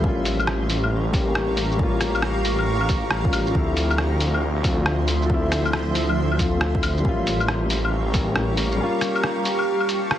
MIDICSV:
0, 0, Header, 1, 5, 480
1, 0, Start_track
1, 0, Tempo, 437956
1, 43, Time_signature, 4, 2, 24, 8
1, 11163, End_track
2, 0, Start_track
2, 0, Title_t, "Ambient pad"
2, 0, Program_c, 0, 92
2, 34, Note_on_c, 0, 67, 79
2, 36, Note_on_c, 0, 77, 75
2, 36, Note_on_c, 0, 82, 74
2, 39, Note_on_c, 0, 85, 89
2, 3840, Note_off_c, 0, 67, 0
2, 3841, Note_off_c, 0, 77, 0
2, 3841, Note_off_c, 0, 82, 0
2, 3843, Note_off_c, 0, 85, 0
2, 3883, Note_on_c, 0, 76, 73
2, 3883, Note_on_c, 0, 84, 89
2, 3886, Note_on_c, 0, 53, 80
2, 7684, Note_off_c, 0, 76, 0
2, 7684, Note_off_c, 0, 84, 0
2, 7686, Note_off_c, 0, 53, 0
2, 7728, Note_on_c, 0, 85, 91
2, 7731, Note_on_c, 0, 82, 75
2, 7733, Note_on_c, 0, 67, 79
2, 7733, Note_on_c, 0, 77, 71
2, 9627, Note_off_c, 0, 82, 0
2, 9651, Note_on_c, 0, 81, 74
2, 11163, Note_off_c, 0, 67, 0
2, 11163, Note_off_c, 0, 77, 0
2, 11163, Note_off_c, 0, 81, 0
2, 11163, Note_off_c, 0, 85, 0
2, 11163, End_track
3, 0, Start_track
3, 0, Title_t, "Upright piano"
3, 0, Program_c, 1, 0
3, 0, Control_c, 1, 64, 127
3, 2, Note_on_c, 1, 55, 94
3, 35, Note_on_c, 1, 58, 87
3, 56, Control_c, 1, 64, 0
3, 63, Note_on_c, 1, 61, 89
3, 92, Note_on_c, 1, 65, 102
3, 277, Control_c, 1, 64, 127
3, 1205, Note_off_c, 1, 55, 0
3, 1217, Note_off_c, 1, 58, 0
3, 1221, Note_on_c, 1, 55, 78
3, 1230, Note_off_c, 1, 61, 0
3, 1233, Note_on_c, 1, 58, 73
3, 1247, Note_on_c, 1, 61, 72
3, 1249, Note_off_c, 1, 65, 0
3, 1260, Note_on_c, 1, 67, 90
3, 1334, Note_off_c, 1, 55, 0
3, 1350, Note_on_c, 1, 55, 76
3, 1353, Note_off_c, 1, 58, 0
3, 1360, Note_off_c, 1, 61, 0
3, 1366, Note_off_c, 1, 67, 0
3, 1379, Note_on_c, 1, 58, 69
3, 1408, Note_on_c, 1, 61, 69
3, 1436, Note_on_c, 1, 67, 81
3, 1902, Note_off_c, 1, 55, 0
3, 1919, Note_on_c, 1, 55, 92
3, 1931, Note_off_c, 1, 58, 0
3, 1947, Note_on_c, 1, 58, 87
3, 1948, Note_off_c, 1, 61, 0
3, 1962, Note_off_c, 1, 67, 0
3, 1979, Note_on_c, 1, 61, 88
3, 2005, Note_on_c, 1, 65, 103
3, 3123, Note_off_c, 1, 55, 0
3, 3137, Note_off_c, 1, 58, 0
3, 3153, Note_off_c, 1, 61, 0
3, 3166, Note_off_c, 1, 65, 0
3, 3528, Note_on_c, 1, 55, 78
3, 3543, Note_on_c, 1, 58, 72
3, 3559, Note_on_c, 1, 61, 74
3, 3573, Note_on_c, 1, 65, 90
3, 3844, Note_on_c, 1, 53, 95
3, 3848, Note_off_c, 1, 55, 0
3, 3856, Note_off_c, 1, 58, 0
3, 3864, Note_off_c, 1, 61, 0
3, 3867, Note_on_c, 1, 57, 88
3, 3871, Note_off_c, 1, 65, 0
3, 3896, Control_c, 1, 64, 0
3, 3898, Note_on_c, 1, 60, 89
3, 3927, Note_on_c, 1, 64, 104
3, 4110, Control_c, 1, 64, 127
3, 5045, Note_off_c, 1, 53, 0
3, 5057, Note_off_c, 1, 57, 0
3, 5072, Note_off_c, 1, 60, 0
3, 5073, Note_on_c, 1, 53, 78
3, 5087, Note_off_c, 1, 64, 0
3, 5088, Note_on_c, 1, 57, 72
3, 5101, Note_on_c, 1, 60, 72
3, 5116, Note_on_c, 1, 65, 84
3, 5189, Note_off_c, 1, 53, 0
3, 5200, Note_off_c, 1, 57, 0
3, 5205, Note_on_c, 1, 53, 74
3, 5207, Note_off_c, 1, 60, 0
3, 5215, Note_off_c, 1, 65, 0
3, 5233, Note_on_c, 1, 57, 70
3, 5262, Note_on_c, 1, 60, 69
3, 5294, Note_on_c, 1, 65, 84
3, 5749, Note_off_c, 1, 53, 0
3, 5766, Note_on_c, 1, 53, 96
3, 5780, Note_off_c, 1, 57, 0
3, 5795, Note_off_c, 1, 60, 0
3, 5796, Note_on_c, 1, 57, 87
3, 5812, Note_off_c, 1, 65, 0
3, 5825, Note_on_c, 1, 60, 89
3, 5855, Note_on_c, 1, 64, 104
3, 6965, Note_off_c, 1, 53, 0
3, 6981, Note_off_c, 1, 57, 0
3, 6981, Note_on_c, 1, 53, 81
3, 6996, Note_off_c, 1, 60, 0
3, 6997, Note_on_c, 1, 57, 74
3, 7011, Note_off_c, 1, 64, 0
3, 7012, Note_on_c, 1, 60, 71
3, 7024, Note_on_c, 1, 65, 86
3, 7101, Note_off_c, 1, 53, 0
3, 7115, Note_off_c, 1, 57, 0
3, 7118, Note_on_c, 1, 53, 78
3, 7122, Note_off_c, 1, 60, 0
3, 7128, Note_off_c, 1, 65, 0
3, 7147, Note_on_c, 1, 57, 70
3, 7177, Note_on_c, 1, 60, 72
3, 7202, Note_on_c, 1, 65, 81
3, 7677, Note_on_c, 1, 55, 95
3, 7683, Note_off_c, 1, 53, 0
3, 7698, Note_off_c, 1, 57, 0
3, 7709, Note_on_c, 1, 58, 86
3, 7713, Note_off_c, 1, 60, 0
3, 7725, Note_off_c, 1, 65, 0
3, 7736, Control_c, 1, 64, 0
3, 7738, Note_on_c, 1, 61, 90
3, 7770, Note_on_c, 1, 65, 106
3, 7913, Control_c, 1, 64, 127
3, 8882, Note_off_c, 1, 55, 0
3, 8898, Note_off_c, 1, 58, 0
3, 8903, Note_on_c, 1, 55, 82
3, 8912, Note_off_c, 1, 61, 0
3, 8917, Note_on_c, 1, 58, 77
3, 8929, Note_off_c, 1, 65, 0
3, 8932, Note_on_c, 1, 61, 77
3, 8946, Note_on_c, 1, 67, 89
3, 9010, Note_off_c, 1, 55, 0
3, 9027, Note_on_c, 1, 55, 73
3, 9035, Note_off_c, 1, 58, 0
3, 9042, Note_off_c, 1, 61, 0
3, 9049, Note_off_c, 1, 67, 0
3, 9057, Note_on_c, 1, 58, 70
3, 9086, Note_on_c, 1, 61, 69
3, 9118, Note_on_c, 1, 67, 84
3, 9580, Note_off_c, 1, 55, 0
3, 9596, Note_on_c, 1, 55, 98
3, 9603, Note_off_c, 1, 58, 0
3, 9620, Note_on_c, 1, 58, 89
3, 9627, Note_off_c, 1, 61, 0
3, 9643, Note_off_c, 1, 67, 0
3, 9652, Note_on_c, 1, 61, 87
3, 9681, Note_on_c, 1, 65, 105
3, 10802, Note_off_c, 1, 55, 0
3, 10813, Note_off_c, 1, 58, 0
3, 10830, Note_off_c, 1, 61, 0
3, 10844, Note_off_c, 1, 65, 0
3, 11163, End_track
4, 0, Start_track
4, 0, Title_t, "Detuned saw bass"
4, 0, Program_c, 2, 39
4, 41, Note_on_c, 2, 33, 89
4, 3864, Note_off_c, 2, 33, 0
4, 3889, Note_on_c, 2, 38, 89
4, 7708, Note_off_c, 2, 38, 0
4, 7725, Note_on_c, 2, 33, 90
4, 9644, Note_off_c, 2, 33, 0
4, 11163, End_track
5, 0, Start_track
5, 0, Title_t, "Drums"
5, 43, Note_on_c, 9, 36, 119
5, 153, Note_off_c, 9, 36, 0
5, 280, Note_on_c, 9, 46, 73
5, 280, Note_on_c, 9, 82, 60
5, 389, Note_off_c, 9, 46, 0
5, 389, Note_off_c, 9, 82, 0
5, 435, Note_on_c, 9, 75, 49
5, 435, Note_on_c, 9, 82, 31
5, 520, Note_on_c, 9, 37, 113
5, 544, Note_off_c, 9, 75, 0
5, 544, Note_off_c, 9, 82, 0
5, 630, Note_off_c, 9, 37, 0
5, 763, Note_on_c, 9, 46, 70
5, 763, Note_on_c, 9, 82, 58
5, 873, Note_off_c, 9, 46, 0
5, 873, Note_off_c, 9, 82, 0
5, 916, Note_on_c, 9, 75, 37
5, 1026, Note_off_c, 9, 75, 0
5, 1243, Note_on_c, 9, 36, 109
5, 1247, Note_on_c, 9, 46, 70
5, 1247, Note_on_c, 9, 82, 55
5, 1353, Note_off_c, 9, 36, 0
5, 1357, Note_off_c, 9, 46, 0
5, 1357, Note_off_c, 9, 82, 0
5, 1483, Note_on_c, 9, 37, 116
5, 1592, Note_off_c, 9, 37, 0
5, 1721, Note_on_c, 9, 46, 72
5, 1721, Note_on_c, 9, 82, 58
5, 1830, Note_off_c, 9, 46, 0
5, 1830, Note_off_c, 9, 82, 0
5, 1875, Note_on_c, 9, 82, 30
5, 1963, Note_on_c, 9, 36, 124
5, 1985, Note_off_c, 9, 82, 0
5, 2073, Note_off_c, 9, 36, 0
5, 2196, Note_on_c, 9, 37, 66
5, 2196, Note_on_c, 9, 46, 75
5, 2196, Note_on_c, 9, 82, 58
5, 2306, Note_off_c, 9, 37, 0
5, 2306, Note_off_c, 9, 46, 0
5, 2306, Note_off_c, 9, 82, 0
5, 2352, Note_on_c, 9, 75, 48
5, 2352, Note_on_c, 9, 82, 29
5, 2435, Note_on_c, 9, 37, 105
5, 2462, Note_off_c, 9, 75, 0
5, 2462, Note_off_c, 9, 82, 0
5, 2544, Note_off_c, 9, 37, 0
5, 2682, Note_on_c, 9, 46, 74
5, 2682, Note_on_c, 9, 82, 55
5, 2791, Note_off_c, 9, 46, 0
5, 2791, Note_off_c, 9, 82, 0
5, 2832, Note_on_c, 9, 75, 35
5, 2942, Note_off_c, 9, 75, 0
5, 3072, Note_on_c, 9, 75, 34
5, 3163, Note_on_c, 9, 46, 70
5, 3163, Note_on_c, 9, 82, 53
5, 3167, Note_on_c, 9, 36, 108
5, 3182, Note_off_c, 9, 75, 0
5, 3273, Note_off_c, 9, 46, 0
5, 3273, Note_off_c, 9, 82, 0
5, 3277, Note_off_c, 9, 36, 0
5, 3401, Note_on_c, 9, 37, 110
5, 3510, Note_off_c, 9, 37, 0
5, 3559, Note_on_c, 9, 36, 112
5, 3646, Note_on_c, 9, 46, 73
5, 3646, Note_on_c, 9, 75, 51
5, 3646, Note_on_c, 9, 82, 58
5, 3669, Note_off_c, 9, 36, 0
5, 3755, Note_off_c, 9, 46, 0
5, 3755, Note_off_c, 9, 75, 0
5, 3755, Note_off_c, 9, 82, 0
5, 3795, Note_on_c, 9, 82, 29
5, 3889, Note_on_c, 9, 36, 113
5, 3904, Note_off_c, 9, 82, 0
5, 3999, Note_off_c, 9, 36, 0
5, 4127, Note_on_c, 9, 46, 75
5, 4127, Note_on_c, 9, 82, 56
5, 4237, Note_off_c, 9, 46, 0
5, 4237, Note_off_c, 9, 82, 0
5, 4277, Note_on_c, 9, 75, 50
5, 4277, Note_on_c, 9, 82, 28
5, 4364, Note_on_c, 9, 37, 107
5, 4387, Note_off_c, 9, 75, 0
5, 4387, Note_off_c, 9, 82, 0
5, 4473, Note_off_c, 9, 37, 0
5, 4607, Note_on_c, 9, 46, 75
5, 4607, Note_on_c, 9, 82, 52
5, 4716, Note_off_c, 9, 46, 0
5, 4716, Note_off_c, 9, 82, 0
5, 4759, Note_on_c, 9, 75, 36
5, 4869, Note_off_c, 9, 75, 0
5, 5089, Note_on_c, 9, 36, 102
5, 5089, Note_on_c, 9, 46, 72
5, 5089, Note_on_c, 9, 82, 53
5, 5199, Note_off_c, 9, 36, 0
5, 5199, Note_off_c, 9, 46, 0
5, 5199, Note_off_c, 9, 82, 0
5, 5327, Note_on_c, 9, 37, 107
5, 5437, Note_off_c, 9, 37, 0
5, 5568, Note_on_c, 9, 46, 73
5, 5568, Note_on_c, 9, 82, 54
5, 5678, Note_off_c, 9, 46, 0
5, 5678, Note_off_c, 9, 82, 0
5, 5723, Note_on_c, 9, 82, 28
5, 5809, Note_on_c, 9, 36, 114
5, 5832, Note_off_c, 9, 82, 0
5, 5918, Note_off_c, 9, 36, 0
5, 6051, Note_on_c, 9, 37, 61
5, 6051, Note_on_c, 9, 46, 81
5, 6051, Note_on_c, 9, 82, 58
5, 6160, Note_off_c, 9, 37, 0
5, 6160, Note_off_c, 9, 46, 0
5, 6160, Note_off_c, 9, 82, 0
5, 6200, Note_on_c, 9, 75, 51
5, 6200, Note_on_c, 9, 82, 29
5, 6287, Note_on_c, 9, 37, 107
5, 6310, Note_off_c, 9, 75, 0
5, 6310, Note_off_c, 9, 82, 0
5, 6396, Note_off_c, 9, 37, 0
5, 6525, Note_on_c, 9, 46, 78
5, 6525, Note_on_c, 9, 82, 52
5, 6635, Note_off_c, 9, 46, 0
5, 6635, Note_off_c, 9, 82, 0
5, 6679, Note_on_c, 9, 75, 36
5, 6789, Note_off_c, 9, 75, 0
5, 6922, Note_on_c, 9, 75, 34
5, 7007, Note_on_c, 9, 36, 96
5, 7008, Note_on_c, 9, 46, 77
5, 7008, Note_on_c, 9, 82, 54
5, 7032, Note_off_c, 9, 75, 0
5, 7117, Note_off_c, 9, 36, 0
5, 7117, Note_off_c, 9, 46, 0
5, 7117, Note_off_c, 9, 82, 0
5, 7246, Note_on_c, 9, 37, 104
5, 7355, Note_off_c, 9, 37, 0
5, 7399, Note_on_c, 9, 36, 105
5, 7488, Note_on_c, 9, 46, 76
5, 7488, Note_on_c, 9, 75, 52
5, 7488, Note_on_c, 9, 82, 53
5, 7508, Note_off_c, 9, 36, 0
5, 7597, Note_off_c, 9, 46, 0
5, 7597, Note_off_c, 9, 75, 0
5, 7597, Note_off_c, 9, 82, 0
5, 7644, Note_on_c, 9, 82, 28
5, 7727, Note_on_c, 9, 36, 109
5, 7754, Note_off_c, 9, 82, 0
5, 7837, Note_off_c, 9, 36, 0
5, 7968, Note_on_c, 9, 46, 79
5, 7968, Note_on_c, 9, 82, 55
5, 8078, Note_off_c, 9, 46, 0
5, 8078, Note_off_c, 9, 82, 0
5, 8115, Note_on_c, 9, 75, 50
5, 8115, Note_on_c, 9, 82, 29
5, 8204, Note_on_c, 9, 37, 100
5, 8225, Note_off_c, 9, 75, 0
5, 8225, Note_off_c, 9, 82, 0
5, 8313, Note_off_c, 9, 37, 0
5, 8442, Note_on_c, 9, 46, 79
5, 8442, Note_on_c, 9, 82, 57
5, 8551, Note_off_c, 9, 46, 0
5, 8551, Note_off_c, 9, 82, 0
5, 8601, Note_on_c, 9, 75, 39
5, 8711, Note_off_c, 9, 75, 0
5, 8921, Note_on_c, 9, 46, 79
5, 8921, Note_on_c, 9, 82, 54
5, 8926, Note_on_c, 9, 36, 99
5, 9030, Note_off_c, 9, 46, 0
5, 9030, Note_off_c, 9, 82, 0
5, 9036, Note_off_c, 9, 36, 0
5, 9158, Note_on_c, 9, 37, 102
5, 9268, Note_off_c, 9, 37, 0
5, 9397, Note_on_c, 9, 46, 81
5, 9397, Note_on_c, 9, 82, 54
5, 9507, Note_off_c, 9, 46, 0
5, 9507, Note_off_c, 9, 82, 0
5, 9553, Note_on_c, 9, 82, 30
5, 9663, Note_off_c, 9, 82, 0
5, 9878, Note_on_c, 9, 37, 64
5, 9878, Note_on_c, 9, 46, 80
5, 9878, Note_on_c, 9, 82, 59
5, 9988, Note_off_c, 9, 37, 0
5, 9988, Note_off_c, 9, 46, 0
5, 9988, Note_off_c, 9, 82, 0
5, 10033, Note_on_c, 9, 75, 53
5, 10033, Note_on_c, 9, 82, 31
5, 10120, Note_on_c, 9, 37, 108
5, 10143, Note_off_c, 9, 75, 0
5, 10143, Note_off_c, 9, 82, 0
5, 10230, Note_off_c, 9, 37, 0
5, 10360, Note_on_c, 9, 46, 78
5, 10360, Note_on_c, 9, 82, 60
5, 10470, Note_off_c, 9, 46, 0
5, 10470, Note_off_c, 9, 82, 0
5, 10507, Note_on_c, 9, 75, 40
5, 10616, Note_off_c, 9, 75, 0
5, 10746, Note_on_c, 9, 75, 37
5, 10839, Note_on_c, 9, 46, 74
5, 10839, Note_on_c, 9, 82, 58
5, 10855, Note_off_c, 9, 75, 0
5, 10949, Note_off_c, 9, 46, 0
5, 10949, Note_off_c, 9, 82, 0
5, 11081, Note_on_c, 9, 37, 108
5, 11163, Note_off_c, 9, 37, 0
5, 11163, End_track
0, 0, End_of_file